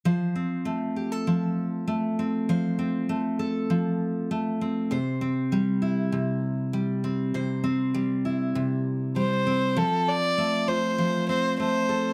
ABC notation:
X:1
M:4/4
L:1/16
Q:1/4=99
K:F
V:1 name="Violin"
z16 | z16 | z16 | z12 c4 |
A2 d4 c4 c2 c4 |]
V:2 name="Steel-string acoustic guitar"
[F,c]2 C2 A,2 G A F,4 A,2 C2 | [F,c]2 C2 A,2 A2 F,4 A,2 C2 | [C,c]2 C2 G,2 E2 C,4 G,2 C2 | [C,c]2 C2 G,2 E2 C,4 G,2 C2 |
F,4 A,2 F2 F,2 C2 A,2 A2 |]